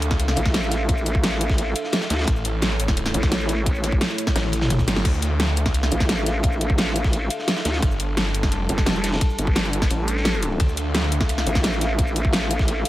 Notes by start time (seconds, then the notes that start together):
Already playing: D2 D4 A4 E5 F5
0.02 closed hi-hat, ride, cabasa
0.10 C#2, kick, snare
0.19 closed hi-hat, ride
0.28 snare
0.36 A1, closed hi-hat, ride, cabasa
0.45 kick, snare
0.54 snare, closed hi-hat, ride
0.63 snare, cabasa
0.71 snare, closed hi-hat, ride, cabasa
0.89 kick, closed hi-hat, ride
0.98 cabasa
1.06 closed hi-hat, ride, cabasa
1.15 kick
1.23 snare, closed hi-hat, ride
1.31 snare
1.41 closed hi-hat, ride, cabasa
1.49 kick, snare
1.58 closed hi-hat, ride
1.76 closed hi-hat, ride, cabasa
1.84 snare
1.92 snare, closed hi-hat, ride
2.01 snare, ride, cabasa
2.10 D2, snare, closed hi-hat, ride, cabasa
2.19 snare, ride
2.27 A1 A3 E4 C#5, kick, closed hi-hat, ride
2.36 cabasa
2.45 closed hi-hat, ride, cabasa
2.62 snare, closed hi-hat, ride
2.70 snare
2.80 closed hi-hat, ride, cabasa
2.88 kick, snare
2.97 closed hi-hat, ride
3.05 snare
3.14 A1, closed hi-hat, ride, cabasa
3.23 kick, snare
3.32 snare, closed hi-hat, ride
3.40 snare, cabasa
3.49 snare, closed hi-hat, ride, cabasa
3.66 kick, closed hi-hat, ride
3.75 cabasa
3.84 snare, closed hi-hat, ride, cabasa
3.92 kick
4.01 snare, closed hi-hat, ride
4.08 snare, cabasa
4.18 closed hi-hat, ride, cabasa
4.27 kick, snare
4.36 A1, snare, closed hi-hat, ride
4.44 snare, high tom
4.52 snare, closed hi-hat, ride, cabasa
4.61 snare, mid tom, ride
4.70 G1, snare, closed hi-hat, mid tom
4.78 kick, snare, ride, cabasa
4.88 snare, closed hi-hat, ride, cabasa
4.96 snare
5.05 D2 D4 A4 E5 F5, kick, closed hi-hat, crash, ride
5.14 cabasa
5.22 closed hi-hat, ride, cabasa
5.40 snare, closed hi-hat, ride
5.48 snare
5.56 closed hi-hat, ride, cabasa
5.65 C#2, kick, snare
5.74 closed hi-hat, ride
5.83 snare
5.91 A1, closed hi-hat, ride, cabasa
6.00 kick, snare
6.09 snare, closed hi-hat, ride
6.17 snare, cabasa
6.26 snare, closed hi-hat, ride, cabasa
6.43 kick, closed hi-hat, ride
6.52 cabasa
6.61 closed hi-hat, ride, cabasa
6.70 kick
6.78 snare, closed hi-hat, ride
6.87 snare
6.96 closed hi-hat, ride, cabasa
7.04 kick, snare
7.13 closed hi-hat, ride
7.30 closed hi-hat, ride, cabasa
7.39 snare
7.48 snare, closed hi-hat, ride
7.56 snare, ride, cabasa
7.65 D2, snare, closed hi-hat, ride, cabasa
7.73 snare, ride
7.82 G1 G3 D4 A4 A5, kick, closed hi-hat, ride
7.91 cabasa
8.00 closed hi-hat, ride, cabasa
8.17 snare, closed hi-hat, ride
8.27 snare
8.34 closed hi-hat, ride, cabasa
8.42 F#1, kick, snare
8.52 closed hi-hat, ride
8.69 F1, closed hi-hat, ride, cabasa
8.78 kick, snare
8.86 snare, closed hi-hat, ride
8.95 snare, cabasa
9.04 snare, closed hi-hat, ride, cabasa
9.13 snare, ride
9.21 kick, closed hi-hat, ride
9.30 cabasa
9.38 G1, closed hi-hat, ride, cabasa
9.47 kick
9.56 snare, closed hi-hat, ride
9.64 snare, cabasa
9.73 closed hi-hat, ride, cabasa
9.82 kick, snare
9.90 A1, closed hi-hat, ride
10.08 closed hi-hat, ride, cabasa
10.17 snare
10.25 snare, closed hi-hat, ride
10.34 cabasa
10.43 closed hi-hat, ride, cabasa
10.52 ride
10.60 D2 E5 F5, kick, closed hi-hat, ride
10.69 cabasa
10.77 closed hi-hat, ride, cabasa
10.94 snare, closed hi-hat, ride
11.03 snare
11.12 closed hi-hat, ride, cabasa
11.20 C#2, kick, snare
11.29 closed hi-hat, ride
11.38 snare
11.47 A1, closed hi-hat, ride, cabasa
11.55 kick, snare
11.63 snare, closed hi-hat, ride
11.73 snare, cabasa
11.81 snare, closed hi-hat, ride, cabasa
11.99 kick, closed hi-hat, ride
12.07 cabasa
12.16 closed hi-hat, ride, cabasa
12.25 kick
12.33 snare, closed hi-hat, ride
12.43 snare
12.51 closed hi-hat, ride, cabasa
12.59 kick, snare
12.68 closed hi-hat, ride
12.85 closed hi-hat, ride, cabasa